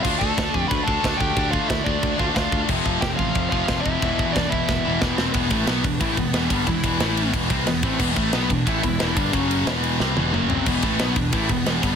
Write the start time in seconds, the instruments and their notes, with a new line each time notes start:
0.03 picked electric bass D2, distorted electric guitar D3 A3, pipe organ F3 A3 D4 A4 D5, lead electric guitar F4 F5, kick, china, crash
0.08 distorted electric guitar D4
0.19 picked electric bass D2, lead electric guitar A4 A5, kick
0.38 picked electric bass D2, kick, snare, china
0.54 picked electric bass F2, kick
0.68 picked electric bass D2, lead electric guitar B4 B5, kick, china
0.84 picked electric bass D2, distorted electric guitar D4, lead electric guitar A4 A5, kick
0.89 distorted electric guitar D3 A3
1.03 picked electric bass D2, distorted electric guitar D3 A3 D4, kick, snare, china
1.17 picked electric bass D2, lead electric guitar G4 G5, kick
1.36 picked electric bass D2, distorted electric guitar D3 A3 D4, kick, china
1.51 lead electric guitar F4 F5, kick
1.68 picked electric bass D2, lead electric guitar E4 E5, kick, snare, china
1.84 picked electric bass D2, lead electric guitar D4 D5, kick
2.03 picked electric bass D2, kick, china
2.17 picked electric bass D2, distorted electric guitar D3 A3 D4, lead electric guitar F4 F5, kick
2.34 picked electric bass D2, distorted electric guitar D3 A3 D4, lead electric guitar F4 F5, kick, snare, china
2.52 picked electric bass D2, kick
2.69 picked electric bass F1, distorted electric guitar F2 C3 F3, pipe organ A3 C4 C5, kick, china, crash
2.86 picked electric bass F1, kick
3.01 picked electric bass F1, lead electric guitar G4 G5, kick, snare, china
3.16 picked electric bass A1, lead electric guitar F4 F5, kick
3.35 picked electric bass F1, kick, china
3.49 picked electric bass F1, distorted electric guitar F3, lead electric guitar F4 F5, kick
3.54 distorted electric guitar F2 C3
3.68 picked electric bass F1, distorted electric guitar F2 C3, kick, snare, china
3.73 distorted electric guitar F3
3.81 lead electric guitar E4 E5
3.86 picked electric bass F1, kick
4.01 picked electric bass E1, distorted electric guitar E2 B2 E3, pipe organ E3 G3 B3 G4 B4, kick, china
4.19 kick
4.33 picked electric bass E1, lead electric guitar D4 D5, kick, snare, china
4.49 picked electric bass E1, lead electric guitar E4 E5, kick
4.69 picked electric bass E1, kick, snare
4.85 picked electric bass E1, distorted electric guitar E2 B2 E3
5.00 picked electric bass E1, distorted electric guitar E2 B2 E3, lead electric guitar B3, kick, snare
5.17 picked electric bass E1, lead electric guitar C4, snare
5.34 picked electric bass E1, distorted electric guitar E2 B2 E3, pipe organ E3 G3 B3 G4 B4, lead electric guitar B3, kick, ride
5.49 picked electric bass A1, distorted electric guitar A2 E3 A3, lead electric guitar A3, kick, ride
5.66 picked electric bass B1, distorted electric guitar B2 F#3 B3, lead electric guitar B3, snare, ride
5.84 picked electric bass E1, distorted electric guitar E2 B2, lead electric guitar D4, kick, ride
6.00 picked electric bass A1, distorted electric guitar A2 E3 A3, lead electric guitar E4, kick, ride
6.17 picked electric bass E1, distorted electric guitar E2 B2, lead electric guitar B3, kick, ride
6.33 picked electric bass E1, distorted electric guitar E2 B2 E3, snare, ride
6.50 picked electric bass G1, distorted electric guitar G2 D3 G3, lead electric guitar B3, kick, ride
6.66 picked electric bass E1, distorted electric guitar E2 B2, lead electric guitar E4, kick, ride
6.84 picked electric bass E1, distorted electric guitar E2 B2 E3, kick, ride
7.00 picked electric bass A1, distorted electric guitar A2 E3 A3, pipe organ A2 E3 A3 E4 E5, snare, ride
7.17 ride
7.33 distorted electric guitar E2 B2 E3, pipe organ G3 B3 G4 B4, kick, ride
7.50 picked electric bass C2, distorted electric guitar C3 G3 C4, kick, ride
7.67 picked electric bass E1, distorted electric guitar E2 B2, lead electric guitar B3, snare, ride
7.83 picked electric bass A1, distorted electric guitar A2 E3 A3, lead electric guitar C4, kick, ride
7.99 picked electric bass E1, distorted electric guitar E2 B2 E3, lead electric guitar B3, kick, crash
8.16 picked electric bass A1, distorted electric guitar A2 E3 A3, lead electric guitar A3, kick, ride
8.32 picked electric bass B1, distorted electric guitar B2 F#3 B3, lead electric guitar B3, snare, ride
8.50 picked electric bass E1, distorted electric guitar E2 B2, lead electric guitar D4, kick, ride
8.66 picked electric bass A1, distorted electric guitar A2 E3 A3, lead electric guitar E4, kick, ride
8.84 picked electric bass E1, distorted electric guitar E2 B2, lead electric guitar E4, kick, ride
8.99 picked electric bass E1, distorted electric guitar E2 B2 E3, lead electric guitar E4, snare, ride
9.15 picked electric bass G1, distorted electric guitar G2 D3 G3, lead electric guitar D4, kick, ride
9.32 picked electric bass F#1, distorted electric guitar F#2 C#3 F#3, pipe organ C#3 F#3 C#4 F#4 F#5, lead electric guitar C#4, kick, ride
9.51 ride
9.66 picked electric bass E1, distorted electric guitar E2 B2 E3, pipe organ E3 G3 B3 G4 B4, snare, ride
9.84 ride
10.00 picked electric bass C2, distorted electric guitar C3 G3 C4, snare
10.16 picked electric bass E1, distorted electric guitar E2 B2 E3, high tom
10.32 picked electric bass F#1, distorted electric guitar F#2 C#3 F#3, pipe organ C#3 F#3 C#4 F#4 F#5, lead electric guitar A#3, mid tom
10.49 lead electric guitar C4, floor tom
10.66 picked electric bass E1, distorted electric guitar E2 B2 E3, pipe organ E3 G3 B3 G4 B4, lead electric guitar B3, kick, crash
10.82 picked electric bass A1, distorted electric guitar A2 E3 A3, lead electric guitar A3, kick, ride
10.99 picked electric bass B1, distorted electric guitar B2 F#3 B3, lead electric guitar B3, snare, ride
11.16 picked electric bass E1, distorted electric guitar E2 B2, lead electric guitar D4, kick, ride
11.32 picked electric bass A1, distorted electric guitar A2 E3 A3, lead electric guitar E4, kick, ride
11.49 picked electric bass E1, distorted electric guitar E2 B2, lead electric guitar B3, kick, ride
11.66 picked electric bass E1, distorted electric guitar E2 B2 E3, snare, ride
11.83 picked electric bass G1, distorted electric guitar G2 D3 G3, lead electric guitar B3, kick, ride